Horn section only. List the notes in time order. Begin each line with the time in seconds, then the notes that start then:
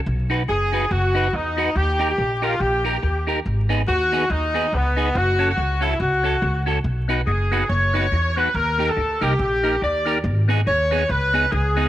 0.49 G#4
0.91 F#4
1.34 D#4
1.77 G4
2.09 G4
2.44 F4
2.60 G4
3.88 F#4
4.31 D#4
4.75 B3
5.17 F#4
5.50 F#4
5.83 E4
6.01 F#4
7.27 G#4
7.70 C#5
8.38 B4
8.56 A#4
8.90 A4
9.23 G4
9.41 G4
9.83 D5
10.68 C#5
11.10 B4
11.52 G#4